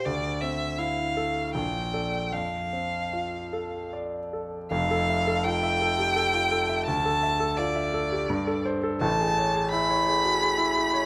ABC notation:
X:1
M:3/4
L:1/16
Q:1/4=83
K:Dphr
V:1 name="Violin"
d2 =e2 f4 g4 | f8 z4 | f4 g8 | a4 d6 z2 |
a4 =b8 |]
V:2 name="Grand piano"
D,,2 C2 =E2 A2 B,,,2 [Ad]2 | F,,2 C2 F2 A2 d2 A2 | [F,,,F,,] A =e A F e A G A F A e | D,, A =e A F e A G G,, A c A |
[A,,,A,,] ^G ^c G =E c G _G ^G E G c |]